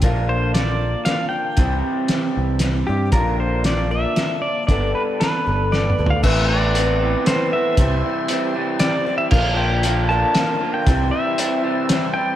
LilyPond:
<<
  \new Staff \with { instrumentName = "Pedal steel guitar" } { \time 3/4 \key bes \lydian \tempo 4 = 116 r8 c''8 d''4 f''8 g''8~ | g''8 r2 g'8 | bes'8 c''8 d''8 e''4 d''8 | d''8 b'8 b'4 d''8. f''16 |
\key c \major e''8 d''4. c''8 e''8~ | e''4. r8 d''8. e''16 | f''8 g''4 a''4~ a''16 g''16~ | g''8 e''2 g''8 | }
  \new Staff \with { instrumentName = "Tonewheel organ" } { \time 3/4 \key bes \lydian r2. | r2. | r2. | r2. |
\key c \major <e' a' b'>2. | <c' e' g' c''>2. | <d' f' bes' d''>2. | <c' e' g' c''>2. | }
  \new Staff \with { instrumentName = "Twelve-string acoustic guitar" } { \time 3/4 \key bes \lydian <bes, d f bes d' bes'>4 <f bes d' bes'>4 <f bes d' bes'>4 | <c g c' e' g'>4 <g c' e' g'>4 <g c' e' g'>8 <c' e' g'>8 | <bes, d f bes d' bes'>4 <f bes d' bes'>8 <f bes d' bes'>8 <f bes d' bes'>4 | <g, d g b d' a'>4 <g b d' a'>8 <g b d' a'>8 <g b d' a'>8 <g b d' a'>8 |
\key c \major <a, e a e' b'>4 <a e' b'>4 <a e' b'>4 | <c g c' e' c''>4 <g c' e' c''>4 <g c' e' c''>8 <c' e' c''>8 | <bes, d f bes d' bes'>4 <f bes d' bes'>8 <f bes d' bes'>8 <f bes d' bes'>4 | <c g c' e' c''>4 <g c' e' c''>4 <g c' e' c''>4 | }
  \new Staff \with { instrumentName = "Clean electric guitar" } { \time 3/4 \key bes \lydian <bes, d bes d' f'>2. | <c e g c' e'>2. | <bes, d bes d' f'>2. | <g b d' a'>2. |
\key c \major <a, e b c' e'>8 <b c' e'>8 <e b c' e'>8 <a, e b c' e'>8 <e b c' e'>8 <b c' e'>8 | <c e g c' e'>8 <g c' e'>8 <e g c' e'>8 <c e g c' e'>8 <e g c' e'>8 <g c' e'>8 | <bes, d bes d' f'>8 <bes d' f'>8 <d bes d' f'>8 <bes, d bes d' f'>8 <d bes d' f'>8 <bes d' f'>8 | <c e g c' e'>8 <g c' e'>8 <e g c' e'>8 <c e g c' e'>8 <e g c' e'>8 <g c' e'>8 | }
  \new Staff \with { instrumentName = "Picked electric bass" } { \clef bass \time 3/4 \key bes \lydian bes,,2 r4 | c,8 r4 c,4 g,8 | bes,,2 r4 | g,,8 r4 g,,4 d,8 |
\key c \major a,,2 r4 | c,8 r2 r8 | bes,,2 r4 | c,8 r2 r8 | }
  \new DrumStaff \with { instrumentName = "Drums" } \drummode { \time 3/4 <hh bd>4 <hh sn>4 <hh sn>4 | <hh bd>4 <hh sn>4 <hh sn>4 | <hh bd>4 <hh sn>4 <hh sn>4 | <hh bd>4 <hh sn>4 \tuplet 3/2 { sn8 toml8 tomfh8 } |
<cymc bd>4 hh4 <hh sn>4 | <hh bd>4 hh4 <hh sn>4 | <cymc bd>4 hh4 <hh sn>4 | <hh bd>4 hh4 <hh sn>4 | }
>>